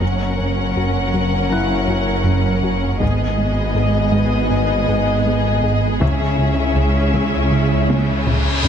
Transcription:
Already playing: F#6 A#6
0.01 F#1 F#2 F#3 A#3 C#4 A#4 F#5
0.39 F#2
0.76 F#2 F#4
1.14 F#2 F#3
1.50 F#2 E4 F#6
1.88 F#2 F#4
2.24 F#2 F#3
2.63 F#2 F#4
3.00 G#1 G#2 G#3 B3 G#4 D#5, taiko
3.38 G#2
3.75 G#2 G#4
4.12 G#2 G#3, taiko
4.50 G#2
4.88 G#2 G#4
5.25 G#2 G#3
5.63 G#2 G#4
6.00 C#2 C#3 G#3 C#4 E4 E5, taiko, reverse cymbal
6.39 C#2
6.76 C#2 C#4
7.14 C#2 C#3, taiko
7.51 C#2
7.89 C#2 C#4, taiko high
8.27 C#2 C#3, taiko low-mid
8.64 C#2 C#4, taiko low

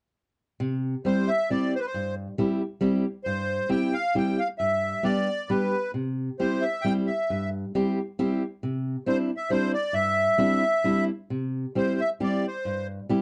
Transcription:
0.60 C3
1.05 G3 C4 E4 G4 C5
1.28 E5
1.50 G3 C4 E4 G4 D5
1.75 C5
1.80 B4
1.86 C5
1.94 G2
2.38 G3 C4 E4 G4
2.81 G3 C4 E4 G4
3.24 G2 C5
3.69 G3 C4 E4 G4 G5
3.94 F5
4.15 G3 C4 E4 G4 G5
4.39 F5
4.58 G2 E5
5.03 G3 B3 D4 G4 D5
5.49 G3 B3 D4 G4 B4
5.94 C3
6.39 G3 C4 E4 G4 C5
6.61 E5
6.81 G3 C4 G5
6.85 E4 G4
7.07 E5
7.30 G2
7.75 G3 C4 E4 G4
8.19 G3 C4 E4 G4
8.63 C3
9.06 G3 C4 D4 E4 C5
9.37 E5
9.50 G3 C4 D4 E4 C5
9.73 D5
9.93 G2 E5
10.38 G3 C4 D4 E4
10.84 G3 C4 D4 E4
11.30 C3
11.75 G3 C4 E4 G4 C5
12.01 E5
12.20 G3 C4 E4 G4 D5
12.47 C5
12.65 G2
13.09 G3 C4 E4 G4

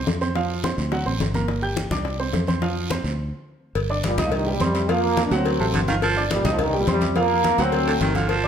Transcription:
Already playing: C4 C5 C6
0.07 F2, high bongo, low bongo, high conga, short guiro
0.21 C4 C5 C6, high bongo, short guiro
0.35 F3 F4 F5, high bongo, high conga, long guiro
0.50 high bongo, high conga
0.64 C4 C5 C6, high bongo, high conga, short guiro
0.78 D2, high conga, short guiro
0.92 F#3 F#4 F#5, high bongo, high conga, long guiro
1.06 A1 C4 C5 C6, high bongo, high conga
1.20 G1, high bongo, low bongo, high conga, short guiro
1.34 A#3 A#4 A#5, high bongo, high conga, short guiro
1.48 high bongo, high conga, long guiro
1.62 G4 G5 G6, high bongo, high conga
1.76 high bongo, high conga, short guiro
1.91 C2 D4 D5 D6, high conga, low conga, short guiro
2.05 high bongo, high conga, long guiro
2.19 C4 C5 C6, high bongo, high conga
2.33 F2, high bongo, low bongo, high conga, short guiro
2.47 C4 C5 C6, high bongo, high conga, short guiro
2.62 F3 F4 F5, high bongo, high conga, long guiro
2.76 high bongo, high conga
2.90 C4 C5 C6, high bongo, high conga, short guiro
3.04 D2, high conga, short guiro
3.75 G1, cowbell, high conga, long guiro
3.90 D4 D5 D6, high conga
4.04 A#2 G3, cowbell, high conga, short guiro
4.18 C2 D#4 D#5 D#6, cowbell, high conga, low conga, short guiro
4.24 A2 F3
4.32 G2 D#3, cowbell, high conga, long guiro
4.46 G3 G4 G5, high conga
4.53 A#2 G3
4.60 F2 C3 G3 C4 C5 C6, cowbell, high conga, short guiro
4.75 cowbell, short guiro
4.89 F3 A#3 F4 F5, cowbell, high conga, long guiro
5.03 high conga
5.17 A#3 A#4 A#5, cowbell, high conga, short guiro
5.26 D4
5.31 D2 F#3 C4 F#4 F#5, cowbell, high conga, short guiro
5.46 cowbell, high conga, long guiro
5.59 A1 C3 A3 A4 A5, high conga
5.74 G1 D3, cowbell, high conga, short guiro
5.88 D#3 F4 F5 F6, high conga, short guiro
6.02 F3, cowbell, high conga, long guiro
6.17 D4 D5 D6, high conga
6.30 A#2 G3, cowbell, high conga, short guiro
6.45 C2 D#4 D#5 D#6, cowbell, high conga, low conga, short guiro
6.52 A2 F3
6.59 G2 D#3, cowbell, high conga, low conga, long guiro
6.73 G3 G4 G5, high conga
6.80 A#2 G3
6.87 F2 C3 G3 C4 C5 C6, cowbell, high conga, short guiro
7.01 cowbell, high conga, short guiro
7.16 F3 A#3 F4 F5, cowbell, high conga, long guiro
7.30 high conga
7.44 A#3 A#4 A#5, cowbell, high conga, short guiro
7.58 D2 F#3 C4 F#4 F#5, cowbell, high conga, short guiro
7.72 cowbell, high conga, long guiro
7.87 D3 A3 A4 A5, high conga
8.01 G1 D#3, cowbell, high conga, short guiro
8.14 D3 F4 F5 F6, high conga, short guiro
8.28 F3, cowbell, high conga, long guiro
8.44 D4 D5 D6, high conga

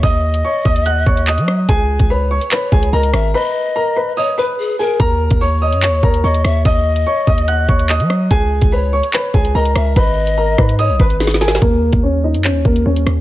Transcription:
0.03 D#2 D#5 D#6, kick, closed hi-hat
0.34 closed hi-hat
0.45 C#5 C#6
0.65 D#2 D#5 D#6, kick
0.76 closed hi-hat
0.86 F#5 F#6, closed hi-hat
1.07 D#2 C#5 C#6, kick
1.17 closed hi-hat
1.27 D#5 D#6, clap
1.38 F#3, closed hi-hat
1.48 cross-stick
1.69 C#2 G#4 G#5, kick, closed hi-hat
1.99 C#2, kick, closed hi-hat
2.10 B4 C#5 B5
2.31 C#5 C#6
2.41 closed hi-hat
2.51 B4 B5, clap, closed hi-hat
2.72 C#2 G#4 G#5, kick
2.83 closed hi-hat
2.93 C#2 A#4 D#5 A#5
3.03 closed hi-hat
3.13 G#1 E5, cross-stick, closed hi-hat
3.34 B4 D#5 B5
3.76 A#4 A#5
3.96 B4 B5
4.17 C#5 D#5 D#6
4.38 B4 B5
4.58 G#4
4.79 G#4 A#4 G#5
5.00 D#2 A#4 A#5, kick, closed hi-hat
5.31 D#2, kick, closed hi-hat
5.41 C#5 C#6
5.62 D#5 D#6
5.72 F#2, closed hi-hat
5.82 C#5 C#6, clap, closed hi-hat
5.88 D#2
6.03 D#2 A#4 A#5, kick
6.14 closed hi-hat
6.24 D#2 C#5 D#5 C#6
6.34 closed hi-hat
6.45 D#2 E5, cross-stick, closed hi-hat
6.65 D#2 D#5 D#6, kick, closed hi-hat
6.96 closed hi-hat
7.07 C#5 C#6
7.27 D#2 D#5 D#6, kick
7.38 closed hi-hat
7.48 F#5 F#6, closed hi-hat
7.69 D#2 C#5 C#6, kick
7.79 closed hi-hat
7.89 D#5 D#6, clap
8.00 F#3, closed hi-hat
8.10 cross-stick
8.31 C#2 G#4 G#5, kick, closed hi-hat
8.62 C#2, kick, closed hi-hat
8.72 B4 C#5 B5
8.93 C#5 C#6
9.03 closed hi-hat
9.13 B4 B5, clap, closed hi-hat
9.34 C#2 G#4 G#5, kick
9.45 closed hi-hat
9.55 C#2 A#4 D#5 A#5
9.65 closed hi-hat
9.75 C#2 E5, cross-stick, closed hi-hat
9.96 G#1 B4 D#5 B5, kick, closed hi-hat
10.27 closed hi-hat
10.38 A#4 A#5
10.58 G#2 B4 B5, kick, cross-stick
10.69 closed hi-hat
10.79 C#5 D#5 D#6, closed hi-hat
10.89 B1
11.00 G#1 B4 B5, kick
11.10 closed hi-hat
11.20 G#4, snare, closed hi-hat
11.27 snare, closed hi-hat
11.34 snare
11.41 G#4 A#4 G#5, snare
11.48 snare
11.55 snare
11.62 D#2 A#3 A#4, kick, closed hi-hat
11.93 D#2, kick, closed hi-hat
12.03 C#4 C#5
12.24 D#4 D#5
12.34 F#2, closed hi-hat
12.44 C#4 C#5, clap, closed hi-hat
12.50 D#2
12.65 D#2 A#3 A#4, kick
12.76 closed hi-hat
12.86 D#2 C#4 C#5
12.96 closed hi-hat
13.06 D#2, cross-stick, closed hi-hat

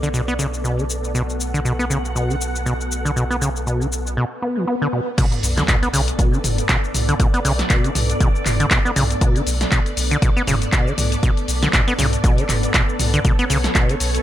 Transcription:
Already playing: B1 B3 A4 D5
0.03 D3, shaker
0.14 B2, shaker
0.28 B3, shaker
0.39 C#3, shaker
0.54 shaker
0.64 B2, shaker
0.78 D3, shaker
0.90 shaker
1.04 shaker
1.15 B2 F#5, shaker
1.30 shaker
1.41 shaker
1.54 D3, shaker
1.65 B2, shaker
1.79 B3, shaker
1.90 C#3, shaker
2.05 shaker
2.15 B2, shaker
2.30 D3, shaker
2.41 shaker
2.56 shaker
2.66 B2, shaker
2.81 shaker
2.92 shaker
3.05 D3, shaker
3.16 B2, shaker
3.30 B3, shaker
3.41 C#3, shaker
3.56 shaker
3.67 B2, shaker
3.81 D3, shaker
3.93 shaker
4.07 shaker
4.17 B2, swell
4.42 B3
4.57 E3
4.67 B3
4.82 D3
4.93 B2
5.18 B2 B3 A4 D5, kick, closed hi-hat, crash, sub drop, shaker
5.32 closed hi-hat, shaker
5.43 B1, open hi-hat, shaker
5.57 D3, snare, closed hi-hat, shaker
5.68 B2, kick, clap, closed hi-hat, shaker
5.83 B3, closed hi-hat, shaker
5.93 B1 C#3, open hi-hat, shaker
6.08 closed hi-hat, shaker
6.19 B2, kick, closed hi-hat, shaker
6.33 D3, shaker
6.44 F#1, mid tom, open hi-hat, shaker
6.58 closed hi-hat, shaker
6.69 B2, kick, clap, closed hi-hat, shaker
6.84 shaker
6.94 B1, mid tom, open hi-hat, shaker
7.09 D3, closed hi-hat, shaker
7.20 B2, kick, closed hi-hat, shaker
7.34 B3, closed hi-hat, shaker
7.45 B1 C#3, open hi-hat, shaker
7.59 snare, closed hi-hat, shaker
7.70 B2, kick, clap, closed hi-hat, shaker
7.84 D3, closed hi-hat, shaker
7.95 B1, mid tom, open hi-hat, shaker
8.10 closed hi-hat, shaker
8.20 B2, kick, closed hi-hat, shaker
8.35 shaker
8.46 F#1, clap, mid tom, open hi-hat, shaker
8.60 D3, closed hi-hat, shaker
8.71 B2, kick, clap, closed hi-hat, shaker
8.85 B3, shaker
8.96 B1 C#3, mid tom, open hi-hat, shaker
9.11 closed hi-hat, shaker
9.21 B2, kick, closed hi-hat, shaker
9.36 D3, closed hi-hat, shaker
9.47 B1, open hi-hat, shaker
9.61 snare, closed hi-hat, shaker
9.72 B2, kick, clap, closed hi-hat, shaker
9.86 closed hi-hat, shaker
9.97 B1, open hi-hat, shaker
10.11 D3, closed hi-hat, shaker
10.22 B2, kick, closed hi-hat, shaker
10.36 B3, shaker
10.47 F#1 C#3, mid tom, open hi-hat, shaker
10.62 closed hi-hat, shaker
10.72 B2, kick, clap, closed hi-hat, shaker
10.87 D3, shaker
10.98 B1, mid tom, open hi-hat, shaker
11.12 closed hi-hat, shaker
11.23 B2, kick, closed hi-hat, shaker
11.37 closed hi-hat, shaker
11.48 B1, open hi-hat, shaker
11.62 D3, snare, closed hi-hat, shaker
11.73 B2, kick, clap, closed hi-hat, shaker
11.88 B3, closed hi-hat, shaker
11.98 B1 C#3, mid tom, open hi-hat, shaker
12.13 closed hi-hat, shaker
12.24 B2, kick, closed hi-hat, shaker
12.38 D3, closed hi-hat, shaker
12.49 F#1, clap, mid tom, open hi-hat, shaker
12.63 closed hi-hat, shaker
12.74 B2, kick, clap, closed hi-hat, shaker
12.89 shaker
12.99 B1, mid tom, open hi-hat, shaker
13.14 D3, closed hi-hat, shaker
13.25 B2 C#5, kick, closed hi-hat, shaker
13.39 B3, closed hi-hat, shaker
13.50 B1 C#3, open hi-hat, shaker
13.64 snare, closed hi-hat, shaker
13.75 B2, kick, clap, closed hi-hat, shaker
13.89 D3, closed hi-hat, shaker
14.00 B1, open hi-hat, shaker
14.15 closed hi-hat, shaker

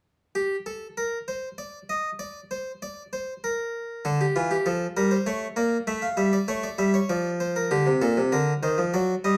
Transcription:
0.35 G4
0.66 A4
0.97 A#4
1.28 C5
1.58 D5
1.89 D#5
2.19 D5
2.51 C5
2.82 D5
3.13 C5
3.44 A#4
4.05 D3 A4
4.21 G4
4.36 E3 F4
4.51 G4
4.66 F3 A4
4.97 G3 A#4
5.11 C5
5.26 A3 C#5
5.56 A#3 D5
5.87 A3 E5
6.02 F5
6.17 G3 E5
6.33 D5
6.48 A3 C#5
6.63 D5
6.78 G3 E5
6.94 C#5
7.09 F3 D5
7.40 C5
7.56 A#4
7.71 D3 G4
7.86 C3
8.02 A#2 A4
8.17 C3
8.32 D3 A#4
8.63 D#3 C5
8.78 F3
8.94 F#3 D5
9.24 G3 D#5

